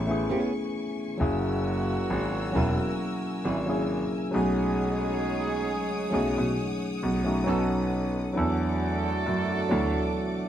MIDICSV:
0, 0, Header, 1, 6, 480
1, 0, Start_track
1, 0, Tempo, 895522
1, 635, Time_signature, 4, 2, 24, 8
1, 5620, End_track
2, 0, Start_track
2, 0, Title_t, "String section"
2, 0, Program_c, 0, 48
2, 0, Note_on_c, 0, 71, 67
2, 0, Note_on_c, 0, 80, 69
2, 0, Note_on_c, 0, 85, 86
2, 615, Note_off_c, 0, 71, 0
2, 616, Note_off_c, 0, 85, 0
2, 630, Note_on_c, 0, 70, 69
2, 631, Note_on_c, 0, 88, 80
2, 2295, Note_off_c, 0, 70, 0
2, 2296, Note_off_c, 0, 88, 0
2, 2316, Note_on_c, 0, 87, 95
2, 2317, Note_on_c, 0, 73, 80
2, 2317, Note_on_c, 0, 78, 73
2, 3975, Note_off_c, 0, 80, 0
2, 3979, Note_off_c, 0, 73, 0
2, 3996, Note_on_c, 0, 71, 76
2, 4454, Note_off_c, 0, 78, 0
2, 4454, Note_off_c, 0, 87, 0
2, 4469, Note_on_c, 0, 78, 66
2, 4470, Note_off_c, 0, 71, 0
2, 4471, Note_on_c, 0, 57, 70
2, 4471, Note_on_c, 0, 86, 80
2, 5620, Note_off_c, 0, 57, 0
2, 5620, Note_off_c, 0, 78, 0
2, 5620, Note_off_c, 0, 86, 0
2, 5620, End_track
3, 0, Start_track
3, 0, Title_t, "Nylon-string guitar"
3, 0, Program_c, 1, 24
3, 156, Note_on_c, 1, 59, 70
3, 163, Note_on_c, 1, 61, 84
3, 167, Note_on_c, 1, 68, 96
3, 272, Note_off_c, 1, 59, 0
3, 276, Note_off_c, 1, 61, 0
3, 278, Note_off_c, 1, 68, 0
3, 1363, Note_on_c, 1, 58, 67
3, 1367, Note_on_c, 1, 64, 64
3, 1372, Note_on_c, 1, 68, 75
3, 1433, Note_off_c, 1, 58, 0
3, 1435, Note_off_c, 1, 64, 0
3, 1438, Note_off_c, 1, 68, 0
3, 1840, Note_on_c, 1, 58, 61
3, 1848, Note_on_c, 1, 64, 70
3, 1851, Note_on_c, 1, 68, 69
3, 1911, Note_off_c, 1, 58, 0
3, 1915, Note_off_c, 1, 64, 0
3, 1917, Note_off_c, 1, 68, 0
3, 3278, Note_on_c, 1, 57, 75
3, 3283, Note_on_c, 1, 63, 79
3, 3288, Note_on_c, 1, 68, 78
3, 3350, Note_off_c, 1, 57, 0
3, 3353, Note_off_c, 1, 63, 0
3, 3356, Note_off_c, 1, 68, 0
3, 3998, Note_on_c, 1, 59, 75
3, 4004, Note_on_c, 1, 63, 88
3, 4009, Note_on_c, 1, 69, 101
3, 4091, Note_off_c, 1, 59, 0
3, 4094, Note_off_c, 1, 63, 0
3, 4097, Note_off_c, 1, 69, 0
3, 5197, Note_on_c, 1, 62, 65
3, 5203, Note_on_c, 1, 66, 77
3, 5209, Note_on_c, 1, 69, 73
3, 5270, Note_off_c, 1, 62, 0
3, 5273, Note_off_c, 1, 66, 0
3, 5276, Note_off_c, 1, 69, 0
3, 5620, End_track
4, 0, Start_track
4, 0, Title_t, "Horn section"
4, 0, Program_c, 2, 61
4, 0, Note_on_c, 2, 52, 72
4, 0, Note_on_c, 2, 59, 72
4, 0, Note_on_c, 2, 61, 74
4, 0, Note_on_c, 2, 64, 79
4, 374, Note_off_c, 2, 52, 0
4, 374, Note_off_c, 2, 61, 0
4, 374, Note_off_c, 2, 64, 0
4, 375, Note_off_c, 2, 59, 0
4, 636, Note_on_c, 2, 54, 72
4, 636, Note_on_c, 2, 58, 74
4, 636, Note_on_c, 2, 61, 71
4, 636, Note_on_c, 2, 66, 79
4, 2054, Note_off_c, 2, 54, 0
4, 2054, Note_off_c, 2, 58, 0
4, 2054, Note_off_c, 2, 61, 0
4, 2054, Note_off_c, 2, 66, 0
4, 2314, Note_on_c, 2, 61, 78
4, 2314, Note_on_c, 2, 63, 77
4, 2315, Note_on_c, 2, 56, 84
4, 2315, Note_on_c, 2, 68, 91
4, 3733, Note_off_c, 2, 61, 0
4, 3733, Note_off_c, 2, 63, 0
4, 3734, Note_off_c, 2, 56, 0
4, 3734, Note_off_c, 2, 68, 0
4, 3995, Note_on_c, 2, 63, 60
4, 3996, Note_on_c, 2, 54, 61
4, 3996, Note_on_c, 2, 59, 60
4, 3996, Note_on_c, 2, 66, 66
4, 4230, Note_off_c, 2, 63, 0
4, 4231, Note_off_c, 2, 54, 0
4, 4231, Note_off_c, 2, 59, 0
4, 4231, Note_off_c, 2, 66, 0
4, 4474, Note_on_c, 2, 57, 82
4, 4474, Note_on_c, 2, 62, 79
4, 4474, Note_on_c, 2, 66, 73
4, 4474, Note_on_c, 2, 69, 89
4, 5620, Note_off_c, 2, 57, 0
4, 5620, Note_off_c, 2, 62, 0
4, 5620, Note_off_c, 2, 66, 0
4, 5620, Note_off_c, 2, 69, 0
4, 5620, End_track
5, 0, Start_track
5, 0, Title_t, "Tine electric piano"
5, 0, Program_c, 3, 4
5, 0, Control_c, 3, 64, 127
5, 0, Note_on_c, 3, 57, 84
5, 0, Note_on_c, 3, 59, 73
5, 0, Note_on_c, 3, 61, 73
5, 0, Note_on_c, 3, 64, 69
5, 0, Note_on_c, 3, 68, 84
5, 36, Note_off_c, 3, 57, 0
5, 36, Note_on_c, 3, 57, 84
5, 42, Note_off_c, 3, 59, 0
5, 42, Note_on_c, 3, 59, 76
5, 48, Note_off_c, 3, 61, 0
5, 48, Note_on_c, 3, 61, 73
5, 53, Note_off_c, 3, 64, 0
5, 53, Note_on_c, 3, 64, 70
5, 59, Note_off_c, 3, 68, 0
5, 59, Note_on_c, 3, 68, 89
5, 560, Note_off_c, 3, 57, 0
5, 563, Note_off_c, 3, 59, 0
5, 567, Note_off_c, 3, 61, 0
5, 569, Note_off_c, 3, 64, 0
5, 572, Note_off_c, 3, 68, 0
5, 629, Note_on_c, 3, 54, 84
5, 634, Note_on_c, 3, 58, 75
5, 640, Note_on_c, 3, 61, 78
5, 641, Control_c, 3, 64, 0
5, 646, Note_on_c, 3, 64, 78
5, 650, Note_on_c, 3, 68, 96
5, 737, Control_c, 3, 64, 127
5, 1269, Note_off_c, 3, 54, 0
5, 1271, Note_off_c, 3, 58, 0
5, 1274, Note_off_c, 3, 61, 0
5, 1277, Note_off_c, 3, 64, 0
5, 1279, Note_off_c, 3, 68, 0
5, 1350, Note_on_c, 3, 54, 81
5, 1356, Note_on_c, 3, 58, 79
5, 1362, Note_on_c, 3, 61, 74
5, 1367, Note_on_c, 3, 64, 74
5, 1373, Note_on_c, 3, 70, 89
5, 1880, Note_off_c, 3, 54, 0
5, 1883, Note_off_c, 3, 58, 0
5, 1886, Note_off_c, 3, 61, 0
5, 1889, Note_off_c, 3, 64, 0
5, 1891, Note_off_c, 3, 70, 0
5, 1960, Note_on_c, 3, 54, 82
5, 1965, Note_on_c, 3, 58, 82
5, 1972, Note_on_c, 3, 61, 74
5, 1976, Note_on_c, 3, 64, 81
5, 1981, Note_on_c, 3, 68, 89
5, 2303, Note_off_c, 3, 54, 0
5, 2309, Note_on_c, 3, 54, 86
5, 2313, Note_off_c, 3, 61, 0
5, 2315, Note_off_c, 3, 58, 0
5, 2315, Note_on_c, 3, 57, 79
5, 2319, Note_on_c, 3, 61, 79
5, 2320, Note_off_c, 3, 64, 0
5, 2321, Control_c, 3, 64, 0
5, 2323, Note_off_c, 3, 68, 0
5, 2324, Note_on_c, 3, 63, 82
5, 2330, Note_on_c, 3, 68, 90
5, 2408, Control_c, 3, 64, 127
5, 3160, Note_off_c, 3, 54, 0
5, 3163, Note_off_c, 3, 57, 0
5, 3165, Note_off_c, 3, 61, 0
5, 3168, Note_off_c, 3, 63, 0
5, 3171, Note_off_c, 3, 68, 0
5, 3270, Note_on_c, 3, 54, 80
5, 3277, Note_on_c, 3, 57, 77
5, 3281, Note_on_c, 3, 61, 72
5, 3287, Note_on_c, 3, 63, 73
5, 3291, Note_on_c, 3, 68, 88
5, 3800, Note_off_c, 3, 54, 0
5, 3803, Note_off_c, 3, 57, 0
5, 3806, Note_off_c, 3, 61, 0
5, 3808, Note_off_c, 3, 63, 0
5, 3811, Note_off_c, 3, 68, 0
5, 3880, Note_on_c, 3, 54, 86
5, 3885, Note_on_c, 3, 57, 84
5, 3891, Note_on_c, 3, 61, 76
5, 3896, Note_on_c, 3, 63, 83
5, 3901, Note_on_c, 3, 66, 93
5, 3982, Note_off_c, 3, 54, 0
5, 3988, Note_on_c, 3, 54, 101
5, 3992, Note_off_c, 3, 61, 0
5, 3994, Note_on_c, 3, 59, 83
5, 3995, Note_off_c, 3, 57, 0
5, 3997, Note_off_c, 3, 63, 0
5, 3998, Note_on_c, 3, 61, 80
5, 4001, Control_c, 3, 64, 0
5, 4003, Note_off_c, 3, 66, 0
5, 4003, Note_on_c, 3, 63, 87
5, 4009, Note_on_c, 3, 69, 102
5, 4100, Control_c, 3, 64, 127
5, 4416, Note_off_c, 3, 54, 0
5, 4419, Note_off_c, 3, 59, 0
5, 4421, Note_off_c, 3, 61, 0
5, 4424, Note_off_c, 3, 63, 0
5, 4427, Note_off_c, 3, 69, 0
5, 4467, Note_on_c, 3, 54, 85
5, 4473, Note_on_c, 3, 59, 77
5, 4478, Note_on_c, 3, 62, 81
5, 4483, Control_c, 3, 64, 0
5, 4484, Note_on_c, 3, 64, 81
5, 4489, Note_on_c, 3, 69, 94
5, 4571, Control_c, 3, 64, 127
5, 5107, Note_off_c, 3, 54, 0
5, 5110, Note_off_c, 3, 59, 0
5, 5113, Note_off_c, 3, 62, 0
5, 5116, Note_off_c, 3, 64, 0
5, 5118, Note_off_c, 3, 69, 0
5, 5192, Note_on_c, 3, 54, 90
5, 5195, Note_on_c, 3, 59, 75
5, 5202, Note_on_c, 3, 62, 71
5, 5208, Note_on_c, 3, 64, 77
5, 5212, Note_on_c, 3, 66, 93
5, 5620, Note_off_c, 3, 54, 0
5, 5620, Note_off_c, 3, 59, 0
5, 5620, Note_off_c, 3, 62, 0
5, 5620, Note_off_c, 3, 64, 0
5, 5620, Note_off_c, 3, 66, 0
5, 5620, End_track
6, 0, Start_track
6, 0, Title_t, "Grand piano"
6, 0, Program_c, 4, 0
6, 0, Note_on_c, 4, 33, 86
6, 119, Note_off_c, 4, 33, 0
6, 644, Note_on_c, 4, 30, 98
6, 1033, Note_off_c, 4, 30, 0
6, 1127, Note_on_c, 4, 32, 102
6, 1319, Note_off_c, 4, 32, 0
6, 1368, Note_on_c, 4, 28, 102
6, 1470, Note_off_c, 4, 28, 0
6, 1848, Note_on_c, 4, 32, 92
6, 2146, Note_off_c, 4, 32, 0
6, 2327, Note_on_c, 4, 35, 102
6, 3019, Note_off_c, 4, 35, 0
6, 3288, Note_on_c, 4, 35, 86
6, 3390, Note_off_c, 4, 35, 0
6, 3417, Note_on_c, 4, 47, 89
6, 3502, Note_off_c, 4, 47, 0
6, 3767, Note_on_c, 4, 35, 92
6, 3959, Note_off_c, 4, 35, 0
6, 4004, Note_on_c, 4, 35, 94
6, 4394, Note_off_c, 4, 35, 0
6, 4487, Note_on_c, 4, 40, 103
6, 4876, Note_off_c, 4, 40, 0
6, 4965, Note_on_c, 4, 42, 95
6, 5157, Note_off_c, 4, 42, 0
6, 5204, Note_on_c, 4, 38, 101
6, 5308, Note_off_c, 4, 38, 0
6, 5620, End_track
0, 0, End_of_file